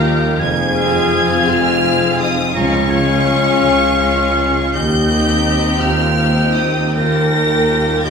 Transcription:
Already playing: cello section D#2, double bass section D#2, harp D#3 F3 A#3 D#4 F4 D#5, french horn section A#3, viola section D#4 F4, violin section G4 F5 A#5
0.01 harp G3, oboe G5
0.38 double bass section F1, cello section F2, harp F3, french horn section G#4, oboe G#5, violin section G#6
0.75 harp G#3, viola section C4 F4, violin section G#4 F5, oboe F5
1.11 harp F4, oboe G#5
1.46 double bass section F1, cello section F2, french horn section F4, harp C5, violin section F6
1.83 viola section C4 F4, violin section G#4 F5, harp G#4
2.19 french horn section D#4, violin section D#6
2.54 double bass section C#2, cello section C#2, harp C#3, french horn section C#4, viola section C#4 F4, violin section G#4 F5 C#6, oboe A#5
2.89 viola section C#4 F4, violin section G#4 F5, oboe G#5
3.25 harp G#3, oboe F5
3.60 cello section C#2, double bass section C#2
3.97 viola section C#4 F4, violin section G#4 F5, harp C#5
4.36 harp G#3
4.74 double bass section D#2, cello section D#2, harp D#3, french horn section G4, oboe D#5, violin section G6
5.09 viola section C4 D#4, harp D#4, violin section G4 G5
5.45 harp G3
5.80 double bass section D#2, cello section D#2, french horn section F4, harp G4, oboe G5, violin section F6
6.18 viola section C4 D#4, violin section G4 G5, harp C5
6.55 harp G3, french horn section D#4, violin section D#6
6.93 cello section D#2, double bass section D#2, harp D#3, viola section A#3 F4, violin section G4 G5 A#6, french horn section A#4, oboe G5
7.32 viola section A#3 F4, harp D#4, violin section G4 G5
7.68 harp G3
8.03 cello section D#2, double bass section D#2, harp F4, french horn section G4, oboe D#5, violin section G6

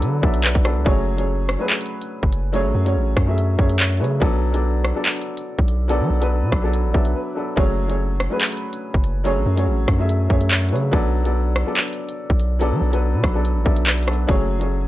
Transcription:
Already playing: grand piano F#3 B3 D4 A4 B4 D5
0.02 808-style bass D3, closed hi-hat
0.21 808-style bass B1, grand piano F#3 B3 D4 A4 D5 E5, kick
0.34 closed hi-hat
0.44 grand piano B4, clap
0.55 808-style bass B1, kick, closed hi-hat
0.63 grand piano F#3 B3 D4 A4 D5, cross-stick, closed hi-hat
0.76 808-style bass C#2
0.85 808-style bass F#1, grand piano F#3 A3 C#4 G#4 C#5, kick, closed hi-hat
1.17 grand piano F#3 A3 C#4 G#4 C#5, closed hi-hat
1.49 cross-stick, closed hi-hat
1.58 grand piano F#3 A3 C#4 G#4 B4
1.70 clap, closed hi-hat
1.75 closed hi-hat
1.81 closed hi-hat
1.86 closed hi-hat
2.02 closed hi-hat
2.23 808-style bass F#1, kick
2.33 closed hi-hat
2.52 grand piano F#3 A3 C#4 G#4 C#5, closed hi-hat
2.65 808-style bass A1
2.75 808-style bass F#2
2.85 grand piano F#3 A3 C#4 G#4 C#5, closed hi-hat
2.96 808-style bass A1
3.17 808-style bass F#2, kick, cross-stick, closed hi-hat
3.26 grand piano F#3 A3 C#4 G#4 E5
3.38 closed hi-hat
3.57 808-style bass F#2, grand piano F#3 A3 C#4 G#4 C#5 E5, kick
3.69 closed hi-hat
3.79 grand piano C#5, clap
3.91 closed hi-hat
3.97 808-style bass C#3, grand piano F#3 A3 C#4 G#4 B4, closed hi-hat
4.02 grand piano C#5, closed hi-hat
4.20 808-style bass B1, grand piano F#3 B3 D4 A4 D5, kick, closed hi-hat
4.52 grand piano F#3 B3 D4 A4 D5, closed hi-hat
4.84 cross-stick, closed hi-hat
4.94 grand piano F#3 B3 D4 A4 D5
5.06 clap, closed hi-hat
5.11 closed hi-hat
5.17 closed hi-hat
5.22 closed hi-hat
5.37 closed hi-hat
5.59 808-style bass B1, kick
5.68 closed hi-hat
5.88 grand piano F#3 B3 D4 A4 D5, closed hi-hat
6.01 808-style bass F#3
6.10 808-style bass B1
6.20 grand piano F#3 B3 D4 A4 B4, closed hi-hat
6.42 808-style bass B2
6.52 808-style bass B1, kick, cross-stick, closed hi-hat
6.62 grand piano F#3 B3 D4 A4 D5
6.74 closed hi-hat
6.84 808-style bass A1
6.93 808-style bass B1, grand piano F#3 B3 D4 A4 D5 E5, kick
7.05 closed hi-hat
7.15 grand piano B4
7.35 grand piano F#3 B3 D4 A4 D5
7.56 808-style bass F#1, grand piano F#3 A3 C#4 G#4 C#5, kick, closed hi-hat
7.88 grand piano F#3 A3 C#4 G#4 C#5, closed hi-hat
8.20 cross-stick, closed hi-hat
8.30 grand piano F#3 A3 C#4 G#4 B4
8.41 clap, closed hi-hat
8.47 closed hi-hat
8.52 closed hi-hat
8.57 closed hi-hat
8.73 closed hi-hat
8.94 808-style bass F#1, kick
9.04 closed hi-hat
9.24 grand piano F#3 A3 C#4 G#4 C#5, closed hi-hat
9.36 808-style bass A1
9.46 808-style bass F#2
9.56 grand piano F#3 A3 C#4 G#4 C#5, closed hi-hat
9.67 808-style bass A1
9.88 808-style bass F#2, kick, cross-stick, closed hi-hat
9.98 grand piano F#3 A3 C#4 G#4 E5
10.09 closed hi-hat
10.29 808-style bass F#2, grand piano F#3 A3 C#4 G#4 C#5 E5, kick
10.41 closed hi-hat
10.51 grand piano C#5, clap
10.62 closed hi-hat
10.69 808-style bass C#3, grand piano F#3 A3 C#4 G#4 B4, closed hi-hat
10.73 grand piano C#5, closed hi-hat
10.91 808-style bass B1, grand piano F#3 B3 D4 A4 D5, kick, closed hi-hat
11.24 grand piano F#3 B3 D4 A4 D5, closed hi-hat
11.56 cross-stick, closed hi-hat
11.65 grand piano F#3 B3 D4 A4 D5
11.77 clap, closed hi-hat
11.82 closed hi-hat
11.88 closed hi-hat
11.93 closed hi-hat
12.09 closed hi-hat
12.30 808-style bass B1, kick
12.40 closed hi-hat
12.59 grand piano F#3 B3 D4 A4 D5, closed hi-hat
12.72 808-style bass F#3
12.82 808-style bass B1
12.91 grand piano F#3 B3 D4 A4 B4, closed hi-hat
13.14 808-style bass B2
13.24 808-style bass B1, kick, cross-stick, closed hi-hat
13.33 grand piano F#3 B3 D4 A4 D5
13.45 closed hi-hat
13.56 808-style bass A1
13.64 808-style bass B1, grand piano F#3 B3 D4 A4 D5 E5, kick
13.77 closed hi-hat
13.87 grand piano B4, clap
13.98 closed hi-hat
14.03 grand piano F#3, closed hi-hat
14.07 grand piano B3 D4 A4 D5, cross-stick, closed hi-hat
14.13 closed hi-hat
14.27 808-style bass F#1, grand piano F#3 A3 C#4 G#4 C#5, kick, closed hi-hat
14.59 grand piano F#3 A3 C#4 G#4 C#5, closed hi-hat

